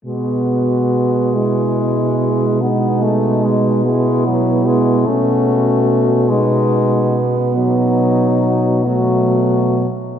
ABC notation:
X:1
M:12/8
L:1/8
Q:3/8=48
K:E
V:1 name="French horn"
F3 E3 D3 E3 | F3 D2 z D3 F2 z |]
V:2 name="French horn"
B,3 G,3 G,3 B,3 | C3 B,4- B, z A,2 z |]
V:3 name="French horn" clef=bass
G,6 B, A, G, G, F, G, | A,3 G,2 z F,3 F,2 z |]
V:4 name="French horn" clef=bass
B,,12 | B,,8- B,,3 z |]